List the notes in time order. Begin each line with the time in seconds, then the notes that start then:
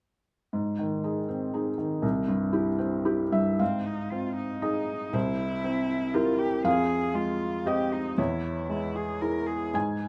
0.53 G#2
0.79 D#3
1.04 D#4 G#4
1.29 C4
1.54 D#4 G#4
1.78 D#3
2.02 C2
2.28 G2
2.53 E4 G4
2.78 C4
3.05 E4 G4
3.32 G2 E5
3.59 G#2 C4 F5
3.86 D#4
4.11 C4 F4
4.37 D#4
4.62 D#4 G#4 D#5
5.13 C2 E4 C5
5.64 C4
6.14 E4 F4 G4 A#4
6.39 G4
6.64 F2 G#4 F5
7.14 G#3 F4
7.66 C4 G4 D#5
7.92 D#4
8.17 E2 E4 C#5
8.69 G#3 E4
8.95 G#4
9.21 E4 G#4 A#4
9.46 G#4
9.74 G#2 G#5